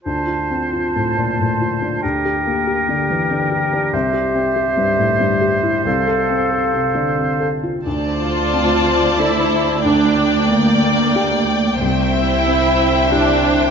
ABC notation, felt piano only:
X:1
M:3/4
L:1/8
Q:1/4=92
K:Dm
V:1 name="Felt piano"
(3D,, F C (3F A,, B,, (3A,, F D | (3D,, G B, (3G D, E, (3D, G D | (3C,, G C (3G G,, A,, (3G,, G E | (3C,, A C (3A C, D, (3C, A F |
D,,2 C2 [DA]2 | D,,2 B,2 [DG]2 | C,,2 C2 [EG]2 |]